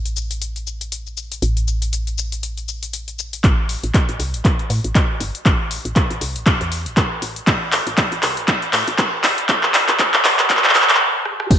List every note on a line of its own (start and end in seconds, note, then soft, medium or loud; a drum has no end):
0.00 1.40 A1 medium
0.06 closed hi-hat soft
0.06 shaker soft
0.16 shaker medium
0.31 closed hi-hat soft
0.31 shaker soft
0.42 closed hi-hat medium
0.42 shaker soft
0.56 closed hi-hat soft
0.56 shaker soft
0.67 shaker medium
0.81 closed hi-hat soft
0.81 shaker soft
0.92 closed hi-hat medium
0.92 shaker soft
1.07 shaker soft
1.17 shaker medium
1.32 closed hi-hat soft
1.32 shaker soft
1.42 3.42 A1 medium
1.42 closed hi-hat medium
1.42 shaker soft
1.57 closed hi-hat soft
1.57 shaker soft
1.68 shaker medium
1.82 closed hi-hat medium
1.82 shaker soft
1.93 closed hi-hat medium
1.93 shaker soft
2.07 closed hi-hat soft
2.07 shaker soft
2.18 shaker medium
2.32 closed hi-hat soft
2.32 shaker soft
2.43 closed hi-hat medium
2.43 shaker soft
2.58 closed hi-hat soft
2.58 shaker soft
2.68 shaker medium
2.83 closed hi-hat soft
2.83 shaker soft
2.93 closed hi-hat medium
2.93 shaker soft
3.08 closed hi-hat soft
3.08 shaker soft
3.19 shaker medium
3.33 closed hi-hat medium
3.33 shaker soft
3.44 3.76 A1 medium
3.44 kick loud
3.44 clap soft
3.44 closed hi-hat medium
3.69 open hi-hat loud
3.84 3.91 A1 medium
3.84 closed hi-hat soft
3.94 kick loud
3.94 clap soft
3.94 closed hi-hat medium
4.09 4.16 A1 medium
4.09 closed hi-hat soft
4.20 4.35 C2 medium
4.20 open hi-hat medium
4.34 4.41 A1 medium
4.34 closed hi-hat medium
4.45 kick loud
4.45 clap soft
4.45 closed hi-hat medium
4.59 closed hi-hat soft
4.70 4.80 A2 medium
4.70 open hi-hat loud
4.84 4.92 A1 medium
4.84 closed hi-hat medium
4.95 kick loud
4.95 clap medium
4.95 closed hi-hat medium
5.20 5.30 G1 loud
5.20 open hi-hat medium
5.35 closed hi-hat medium
5.46 5.78 A1 loud
5.46 kick loud
5.46 clap medium
5.46 closed hi-hat medium
5.71 open hi-hat loud
5.85 5.93 A1 medium
5.85 closed hi-hat soft
5.96 kick loud
5.96 clap medium
5.96 closed hi-hat medium
6.10 6.18 A1 medium
6.10 closed hi-hat soft
6.21 6.37 C2 medium
6.21 open hi-hat loud
6.36 6.43 A1 medium
6.36 closed hi-hat medium
6.46 kick loud
6.46 clap medium
6.46 closed hi-hat medium
6.61 6.88 E2 medium
6.61 closed hi-hat soft
6.72 open hi-hat loud
6.86 7.17 A1 loud
6.86 closed hi-hat soft
6.97 kick loud
6.97 clap medium
6.97 closed hi-hat medium
7.22 7.41 A1 medium
7.22 open hi-hat medium
7.36 closed hi-hat soft
7.47 7.80 A1 loud
7.47 kick loud
7.47 clap medium
7.47 closed hi-hat medium
7.72 clap medium
7.72 open hi-hat loud
7.87 7.94 A1 medium
7.87 closed hi-hat medium
7.98 kick loud
7.98 clap medium
7.98 closed hi-hat medium
8.12 8.20 A1 medium
8.12 closed hi-hat soft
8.23 8.39 C2 medium
8.23 clap medium
8.23 open hi-hat loud
8.37 8.45 A1 loud
8.37 closed hi-hat soft
8.48 kick loud
8.48 clap medium
8.48 closed hi-hat medium
8.62 closed hi-hat soft
8.73 8.83 A2 medium
8.73 clap medium
8.73 open hi-hat loud
8.88 8.95 A1 loud
8.88 closed hi-hat soft
8.98 kick loud
8.98 clap medium
8.98 closed hi-hat medium
9.24 9.34 G1 loud
9.24 clap medium
9.24 open hi-hat loud
9.38 closed hi-hat medium
9.49 9.81 A1 loud
9.49 kick loud
9.49 clap medium
9.49 closed hi-hat medium
9.63 clap medium
9.74 clap medium
9.74 open hi-hat loud
9.88 9.96 A1 medium
9.88 clap medium
9.88 closed hi-hat medium
9.99 kick loud
9.99 clap medium
9.99 closed hi-hat medium
10.14 10.21 A1 medium
10.14 clap medium
10.14 closed hi-hat soft
10.25 10.40 C2 medium
10.25 clap loud
10.25 open hi-hat loud
10.39 10.46 A1 medium
10.39 clap medium
10.39 closed hi-hat medium
10.50 kick loud
10.50 clap loud
10.50 closed hi-hat medium
10.57 clap medium
10.64 10.72 E2 medium
10.64 clap medium
10.64 closed hi-hat soft
10.70 clap medium
10.75 10.85 C2 medium
10.75 clap loud
10.75 open hi-hat loud
10.82 clap medium
10.89 clap medium
10.89 closed hi-hat soft
10.95 clap medium
11.25 cross-stick medium
11.40 cross-stick medium
11.51 11.59 A1 medium
11.51 kick loud
11.51 closed hi-hat medium
11.51 crash loud
11.51 shaker soft